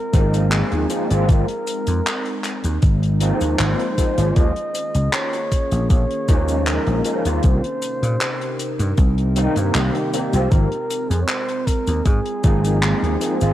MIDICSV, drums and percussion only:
0, 0, Header, 1, 2, 480
1, 0, Start_track
1, 0, Key_signature, -4, "major"
1, 0, Tempo, 769231
1, 804, Time_signature, 4, 2, 24, 8
1, 8445, End_track
2, 0, Start_track
2, 0, Title_t, "Drums"
2, 85, Note_on_c, 9, 36, 110
2, 85, Note_on_c, 9, 42, 96
2, 85, Note_on_c, 9, 69, 77
2, 147, Note_off_c, 9, 36, 0
2, 147, Note_off_c, 9, 69, 0
2, 148, Note_off_c, 9, 42, 0
2, 210, Note_on_c, 9, 69, 51
2, 212, Note_on_c, 9, 42, 68
2, 273, Note_off_c, 9, 69, 0
2, 274, Note_off_c, 9, 42, 0
2, 319, Note_on_c, 9, 42, 70
2, 322, Note_on_c, 9, 39, 127
2, 325, Note_on_c, 9, 69, 44
2, 381, Note_off_c, 9, 42, 0
2, 385, Note_off_c, 9, 39, 0
2, 387, Note_off_c, 9, 69, 0
2, 448, Note_on_c, 9, 42, 41
2, 510, Note_off_c, 9, 42, 0
2, 560, Note_on_c, 9, 42, 102
2, 561, Note_on_c, 9, 69, 75
2, 623, Note_off_c, 9, 42, 0
2, 624, Note_off_c, 9, 69, 0
2, 689, Note_on_c, 9, 42, 64
2, 692, Note_on_c, 9, 69, 52
2, 752, Note_off_c, 9, 42, 0
2, 755, Note_off_c, 9, 69, 0
2, 802, Note_on_c, 9, 42, 69
2, 804, Note_on_c, 9, 36, 120
2, 806, Note_on_c, 9, 69, 45
2, 865, Note_off_c, 9, 42, 0
2, 867, Note_off_c, 9, 36, 0
2, 868, Note_off_c, 9, 69, 0
2, 925, Note_on_c, 9, 42, 48
2, 988, Note_off_c, 9, 42, 0
2, 1042, Note_on_c, 9, 69, 78
2, 1044, Note_on_c, 9, 42, 94
2, 1104, Note_off_c, 9, 69, 0
2, 1106, Note_off_c, 9, 42, 0
2, 1166, Note_on_c, 9, 42, 69
2, 1166, Note_on_c, 9, 69, 51
2, 1228, Note_off_c, 9, 42, 0
2, 1228, Note_off_c, 9, 69, 0
2, 1286, Note_on_c, 9, 42, 66
2, 1290, Note_on_c, 9, 39, 111
2, 1290, Note_on_c, 9, 69, 44
2, 1348, Note_off_c, 9, 42, 0
2, 1353, Note_off_c, 9, 39, 0
2, 1353, Note_off_c, 9, 69, 0
2, 1407, Note_on_c, 9, 42, 41
2, 1470, Note_off_c, 9, 42, 0
2, 1521, Note_on_c, 9, 69, 75
2, 1522, Note_on_c, 9, 42, 103
2, 1523, Note_on_c, 9, 39, 40
2, 1584, Note_off_c, 9, 69, 0
2, 1585, Note_off_c, 9, 42, 0
2, 1586, Note_off_c, 9, 39, 0
2, 1646, Note_on_c, 9, 42, 60
2, 1650, Note_on_c, 9, 69, 58
2, 1708, Note_off_c, 9, 42, 0
2, 1713, Note_off_c, 9, 69, 0
2, 1761, Note_on_c, 9, 42, 68
2, 1761, Note_on_c, 9, 69, 46
2, 1764, Note_on_c, 9, 36, 127
2, 1823, Note_off_c, 9, 42, 0
2, 1824, Note_off_c, 9, 69, 0
2, 1826, Note_off_c, 9, 36, 0
2, 1890, Note_on_c, 9, 42, 50
2, 1953, Note_off_c, 9, 42, 0
2, 2000, Note_on_c, 9, 42, 100
2, 2002, Note_on_c, 9, 69, 66
2, 2062, Note_off_c, 9, 42, 0
2, 2065, Note_off_c, 9, 69, 0
2, 2126, Note_on_c, 9, 69, 52
2, 2130, Note_on_c, 9, 42, 71
2, 2188, Note_off_c, 9, 69, 0
2, 2192, Note_off_c, 9, 42, 0
2, 2241, Note_on_c, 9, 39, 127
2, 2241, Note_on_c, 9, 42, 71
2, 2242, Note_on_c, 9, 69, 41
2, 2303, Note_off_c, 9, 39, 0
2, 2303, Note_off_c, 9, 42, 0
2, 2305, Note_off_c, 9, 69, 0
2, 2368, Note_on_c, 9, 42, 43
2, 2430, Note_off_c, 9, 42, 0
2, 2484, Note_on_c, 9, 36, 64
2, 2484, Note_on_c, 9, 42, 101
2, 2485, Note_on_c, 9, 69, 72
2, 2546, Note_off_c, 9, 36, 0
2, 2546, Note_off_c, 9, 42, 0
2, 2547, Note_off_c, 9, 69, 0
2, 2607, Note_on_c, 9, 42, 65
2, 2609, Note_on_c, 9, 69, 55
2, 2670, Note_off_c, 9, 42, 0
2, 2671, Note_off_c, 9, 69, 0
2, 2722, Note_on_c, 9, 42, 62
2, 2723, Note_on_c, 9, 36, 122
2, 2724, Note_on_c, 9, 69, 42
2, 2784, Note_off_c, 9, 42, 0
2, 2786, Note_off_c, 9, 36, 0
2, 2786, Note_off_c, 9, 69, 0
2, 2847, Note_on_c, 9, 42, 41
2, 2909, Note_off_c, 9, 42, 0
2, 2963, Note_on_c, 9, 42, 99
2, 2963, Note_on_c, 9, 69, 76
2, 3025, Note_off_c, 9, 69, 0
2, 3026, Note_off_c, 9, 42, 0
2, 3086, Note_on_c, 9, 42, 60
2, 3088, Note_on_c, 9, 69, 54
2, 3149, Note_off_c, 9, 42, 0
2, 3151, Note_off_c, 9, 69, 0
2, 3202, Note_on_c, 9, 39, 124
2, 3202, Note_on_c, 9, 42, 62
2, 3202, Note_on_c, 9, 69, 47
2, 3264, Note_off_c, 9, 39, 0
2, 3264, Note_off_c, 9, 69, 0
2, 3265, Note_off_c, 9, 42, 0
2, 3327, Note_on_c, 9, 42, 48
2, 3389, Note_off_c, 9, 42, 0
2, 3442, Note_on_c, 9, 42, 90
2, 3443, Note_on_c, 9, 36, 61
2, 3444, Note_on_c, 9, 69, 71
2, 3505, Note_off_c, 9, 42, 0
2, 3506, Note_off_c, 9, 36, 0
2, 3506, Note_off_c, 9, 69, 0
2, 3566, Note_on_c, 9, 42, 61
2, 3567, Note_on_c, 9, 69, 49
2, 3629, Note_off_c, 9, 42, 0
2, 3629, Note_off_c, 9, 69, 0
2, 3682, Note_on_c, 9, 69, 47
2, 3683, Note_on_c, 9, 36, 122
2, 3683, Note_on_c, 9, 42, 68
2, 3744, Note_off_c, 9, 69, 0
2, 3745, Note_off_c, 9, 36, 0
2, 3746, Note_off_c, 9, 42, 0
2, 3811, Note_on_c, 9, 42, 47
2, 3873, Note_off_c, 9, 42, 0
2, 3922, Note_on_c, 9, 69, 71
2, 3923, Note_on_c, 9, 36, 106
2, 3923, Note_on_c, 9, 42, 95
2, 3984, Note_off_c, 9, 69, 0
2, 3985, Note_off_c, 9, 36, 0
2, 3985, Note_off_c, 9, 42, 0
2, 4045, Note_on_c, 9, 69, 55
2, 4047, Note_on_c, 9, 42, 61
2, 4107, Note_off_c, 9, 69, 0
2, 4109, Note_off_c, 9, 42, 0
2, 4158, Note_on_c, 9, 42, 65
2, 4158, Note_on_c, 9, 69, 47
2, 4163, Note_on_c, 9, 39, 119
2, 4221, Note_off_c, 9, 42, 0
2, 4221, Note_off_c, 9, 69, 0
2, 4225, Note_off_c, 9, 39, 0
2, 4285, Note_on_c, 9, 42, 42
2, 4347, Note_off_c, 9, 42, 0
2, 4396, Note_on_c, 9, 42, 93
2, 4402, Note_on_c, 9, 69, 74
2, 4459, Note_off_c, 9, 42, 0
2, 4464, Note_off_c, 9, 69, 0
2, 4526, Note_on_c, 9, 42, 61
2, 4526, Note_on_c, 9, 69, 50
2, 4588, Note_off_c, 9, 42, 0
2, 4589, Note_off_c, 9, 69, 0
2, 4635, Note_on_c, 9, 42, 69
2, 4641, Note_on_c, 9, 69, 51
2, 4643, Note_on_c, 9, 36, 113
2, 4697, Note_off_c, 9, 42, 0
2, 4704, Note_off_c, 9, 69, 0
2, 4705, Note_off_c, 9, 36, 0
2, 4768, Note_on_c, 9, 42, 45
2, 4830, Note_off_c, 9, 42, 0
2, 4880, Note_on_c, 9, 42, 97
2, 4880, Note_on_c, 9, 69, 79
2, 4943, Note_off_c, 9, 42, 0
2, 4943, Note_off_c, 9, 69, 0
2, 5010, Note_on_c, 9, 42, 64
2, 5014, Note_on_c, 9, 69, 52
2, 5073, Note_off_c, 9, 42, 0
2, 5076, Note_off_c, 9, 69, 0
2, 5119, Note_on_c, 9, 42, 67
2, 5123, Note_on_c, 9, 39, 113
2, 5123, Note_on_c, 9, 69, 45
2, 5182, Note_off_c, 9, 42, 0
2, 5185, Note_off_c, 9, 39, 0
2, 5186, Note_off_c, 9, 69, 0
2, 5250, Note_on_c, 9, 42, 40
2, 5313, Note_off_c, 9, 42, 0
2, 5363, Note_on_c, 9, 42, 100
2, 5364, Note_on_c, 9, 69, 70
2, 5425, Note_off_c, 9, 42, 0
2, 5426, Note_off_c, 9, 69, 0
2, 5488, Note_on_c, 9, 42, 65
2, 5489, Note_on_c, 9, 69, 51
2, 5550, Note_off_c, 9, 42, 0
2, 5552, Note_off_c, 9, 69, 0
2, 5600, Note_on_c, 9, 42, 61
2, 5600, Note_on_c, 9, 69, 49
2, 5603, Note_on_c, 9, 36, 123
2, 5663, Note_off_c, 9, 42, 0
2, 5663, Note_off_c, 9, 69, 0
2, 5665, Note_off_c, 9, 36, 0
2, 5728, Note_on_c, 9, 42, 45
2, 5790, Note_off_c, 9, 42, 0
2, 5841, Note_on_c, 9, 42, 100
2, 5842, Note_on_c, 9, 69, 76
2, 5903, Note_off_c, 9, 42, 0
2, 5904, Note_off_c, 9, 69, 0
2, 5965, Note_on_c, 9, 42, 58
2, 5972, Note_on_c, 9, 69, 55
2, 6027, Note_off_c, 9, 42, 0
2, 6034, Note_off_c, 9, 69, 0
2, 6081, Note_on_c, 9, 39, 110
2, 6084, Note_on_c, 9, 42, 60
2, 6088, Note_on_c, 9, 69, 44
2, 6144, Note_off_c, 9, 39, 0
2, 6146, Note_off_c, 9, 42, 0
2, 6150, Note_off_c, 9, 69, 0
2, 6208, Note_on_c, 9, 42, 44
2, 6271, Note_off_c, 9, 42, 0
2, 6324, Note_on_c, 9, 69, 72
2, 6325, Note_on_c, 9, 42, 104
2, 6387, Note_off_c, 9, 69, 0
2, 6388, Note_off_c, 9, 42, 0
2, 6447, Note_on_c, 9, 69, 52
2, 6448, Note_on_c, 9, 42, 63
2, 6509, Note_off_c, 9, 69, 0
2, 6511, Note_off_c, 9, 42, 0
2, 6562, Note_on_c, 9, 69, 49
2, 6563, Note_on_c, 9, 36, 111
2, 6563, Note_on_c, 9, 42, 72
2, 6624, Note_off_c, 9, 69, 0
2, 6626, Note_off_c, 9, 36, 0
2, 6626, Note_off_c, 9, 42, 0
2, 6688, Note_on_c, 9, 42, 42
2, 6751, Note_off_c, 9, 42, 0
2, 6805, Note_on_c, 9, 42, 104
2, 6805, Note_on_c, 9, 69, 85
2, 6867, Note_off_c, 9, 42, 0
2, 6867, Note_off_c, 9, 69, 0
2, 6932, Note_on_c, 9, 69, 59
2, 6933, Note_on_c, 9, 42, 71
2, 6994, Note_off_c, 9, 69, 0
2, 6995, Note_off_c, 9, 42, 0
2, 7041, Note_on_c, 9, 39, 110
2, 7042, Note_on_c, 9, 69, 49
2, 7043, Note_on_c, 9, 42, 61
2, 7104, Note_off_c, 9, 39, 0
2, 7105, Note_off_c, 9, 42, 0
2, 7105, Note_off_c, 9, 69, 0
2, 7167, Note_on_c, 9, 42, 44
2, 7229, Note_off_c, 9, 42, 0
2, 7283, Note_on_c, 9, 36, 58
2, 7285, Note_on_c, 9, 69, 78
2, 7287, Note_on_c, 9, 42, 92
2, 7346, Note_off_c, 9, 36, 0
2, 7347, Note_off_c, 9, 69, 0
2, 7349, Note_off_c, 9, 42, 0
2, 7408, Note_on_c, 9, 69, 55
2, 7410, Note_on_c, 9, 42, 68
2, 7470, Note_off_c, 9, 69, 0
2, 7472, Note_off_c, 9, 42, 0
2, 7522, Note_on_c, 9, 42, 65
2, 7523, Note_on_c, 9, 36, 119
2, 7523, Note_on_c, 9, 69, 48
2, 7585, Note_off_c, 9, 42, 0
2, 7585, Note_off_c, 9, 69, 0
2, 7586, Note_off_c, 9, 36, 0
2, 7648, Note_on_c, 9, 42, 46
2, 7710, Note_off_c, 9, 42, 0
2, 7761, Note_on_c, 9, 42, 101
2, 7761, Note_on_c, 9, 69, 73
2, 7763, Note_on_c, 9, 36, 103
2, 7823, Note_off_c, 9, 42, 0
2, 7823, Note_off_c, 9, 69, 0
2, 7826, Note_off_c, 9, 36, 0
2, 7891, Note_on_c, 9, 42, 68
2, 7891, Note_on_c, 9, 69, 54
2, 7953, Note_off_c, 9, 42, 0
2, 7953, Note_off_c, 9, 69, 0
2, 8002, Note_on_c, 9, 42, 71
2, 8003, Note_on_c, 9, 69, 47
2, 8004, Note_on_c, 9, 39, 107
2, 8064, Note_off_c, 9, 42, 0
2, 8066, Note_off_c, 9, 69, 0
2, 8067, Note_off_c, 9, 39, 0
2, 8135, Note_on_c, 9, 42, 41
2, 8198, Note_off_c, 9, 42, 0
2, 8244, Note_on_c, 9, 42, 108
2, 8244, Note_on_c, 9, 69, 76
2, 8306, Note_off_c, 9, 69, 0
2, 8307, Note_off_c, 9, 42, 0
2, 8367, Note_on_c, 9, 69, 62
2, 8369, Note_on_c, 9, 42, 64
2, 8429, Note_off_c, 9, 69, 0
2, 8431, Note_off_c, 9, 42, 0
2, 8445, End_track
0, 0, End_of_file